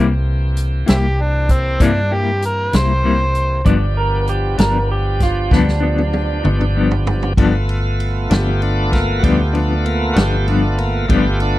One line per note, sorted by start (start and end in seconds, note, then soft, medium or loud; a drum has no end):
0.00 0.83 C2 medium
0.00 0.12 C3 medium
0.00 3.62 E3 medium
0.00 0.13 G3 medium
0.00 0.13 A#3 medium
0.00 3.62 A#3 medium
0.00 3.62 C4 medium
0.00 0.13 E4 medium
0.00 3.62 G4 medium
0.57 closed hi-hat medium
0.86 1.77 C2 medium
0.86 1.06 G3 soft
0.86 1.06 A#3 soft
0.86 0.95 C4 medium
0.86 1.05 E4 soft
0.86 0.96 E4 medium
0.86 1.23 G4 medium
0.86 snare medium
0.86 closed hi-hat medium
1.22 1.53 D4 medium
1.49 1.85 C4 medium
1.49 kick medium
1.49 closed hi-hat medium
1.79 2.69 G2 medium
1.79 1.98 C3 medium
1.79 1.99 G3 medium
1.79 1.99 A#3 medium
1.79 2.15 D4 medium
1.79 1.99 E4 medium
1.79 kick loud
1.79 closed hi-hat medium
2.11 2.31 G3 soft
2.11 2.30 A#3 soft
2.11 2.30 E4 soft
2.11 2.42 G4 medium
2.42 2.77 A#4 medium
2.42 closed hi-hat medium
2.73 3.62 C2 medium
2.73 2.93 G3 soft
2.73 2.92 A#3 soft
2.73 2.92 E4 soft
2.73 3.65 C5 medium
2.73 snare medium
2.73 closed hi-hat medium
3.03 3.22 C3 medium
3.03 3.22 G3 medium
3.03 3.23 A#3 medium
3.03 3.23 E4 medium
3.35 closed hi-hat medium
3.65 4.55 G1 medium
3.65 3.84 G2 medium
3.65 7.33 F3 medium
3.65 3.84 F3 medium
3.65 7.33 B3 medium
3.65 3.84 B3 medium
3.65 7.33 D4 medium
3.65 3.85 D4 medium
3.65 7.33 G4 medium
3.65 3.96 D5 medium
3.65 kick loud
3.65 closed hi-hat medium
3.97 4.27 A#4 medium
4.27 4.59 G4 medium
4.27 closed hi-hat medium
4.58 5.48 G1 medium
4.58 4.78 F3 soft
4.58 4.78 B3 soft
4.58 4.77 D4 soft
4.58 4.89 A#4 medium
4.58 snare loud
4.58 closed hi-hat medium
4.91 5.21 G4 medium
5.20 5.52 F4 medium
5.20 kick medium
5.20 snare soft
5.20 closed hi-hat medium
5.51 6.40 D2 medium
5.51 5.70 G2 medium
5.51 5.70 F3 medium
5.51 5.70 B3 medium
5.51 5.71 D4 medium
5.51 7.19 D4 medium
5.51 kick loud
5.51 snare medium
5.68 snare soft
5.80 6.02 F3 soft
5.80 6.01 B3 medium
5.80 6.00 D4 medium
5.98 high tom medium
6.13 high tom medium
6.44 7.34 G1 medium
6.44 6.64 F3 soft
6.44 6.64 B3 soft
6.44 6.63 D4 soft
6.44 mid tom medium
6.61 mid tom medium
6.75 6.94 G2 medium
6.75 6.94 F3 medium
6.75 6.95 B3 medium
6.75 6.95 D4 medium
6.91 floor tom medium
7.07 floor tom medium
7.22 floor tom medium
7.37 8.26 G1 medium
7.37 7.56 G2 medium
7.37 7.56 F3 medium
7.37 11.05 A3 soft
7.37 11.06 B3 soft
7.37 7.56 B3 medium
7.37 7.57 D4 medium
7.37 11.06 F4 soft
7.37 kick medium
7.37 ride medium
7.69 ride medium
8.00 ride medium
8.30 9.20 G1 medium
8.30 8.50 F3 soft
8.30 8.49 B3 soft
8.30 8.49 D4 soft
8.30 8.62 G4 medium
8.30 snare loud
8.30 ride medium
8.62 8.92 D4 medium
8.62 ride medium
8.92 9.23 A#3 medium
8.92 kick medium
8.92 snare soft
8.92 ride medium
9.19 9.41 G2 medium
9.19 9.42 F3 medium
9.19 9.23 F#4 medium
9.23 10.12 D2 medium
9.23 9.42 B3 medium
9.23 9.42 D4 medium
9.23 9.54 G4 medium
9.23 kick loud
9.23 ride medium
9.53 9.74 F3 soft
9.53 9.73 B3 soft
9.53 9.72 D4 soft
9.53 9.85 D4 medium
9.53 ride medium
9.86 10.16 A#3 medium
9.86 ride medium
10.13 11.05 G1 medium
10.13 10.35 B3 soft
10.13 10.35 D4 soft
10.13 10.17 F#4 medium
10.13 10.47 G4 medium
10.13 ride medium
10.18 10.36 F3 soft
10.18 snare loud
10.47 10.66 G2 medium
10.47 10.66 F3 medium
10.47 10.67 B3 medium
10.47 10.78 D4 medium
10.47 10.67 D4 medium
10.47 ride medium
10.78 11.09 A#3 medium
10.78 ride medium
11.07 11.59 G1 medium
11.07 11.27 G2 medium
11.07 11.28 F3 medium
11.07 11.59 A3 soft
11.07 11.59 B3 soft
11.07 11.28 B3 medium
11.07 11.29 D4 medium
11.07 11.59 F4 medium
11.07 11.40 G4 medium
11.07 kick loud
11.07 ride medium
11.40 11.59 D4 medium
11.40 ride medium